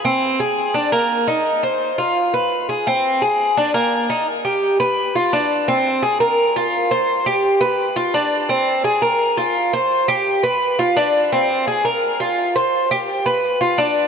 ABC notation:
X:1
M:4/4
L:1/8
Q:1/4=170
K:Cm
V:1 name="Cuban tres"
C2 A2 D B,2 E- | E c2 F2 _c2 A | C2 A2 D B,2 E | z G2 =B2 F D2 |
C2 A B2 F2 c- | c G2 =B2 F D2 | C2 A B2 F2 c- | c G2 =B2 F D2 |
C2 A B2 F2 c- | c G2 =B2 F D2 |]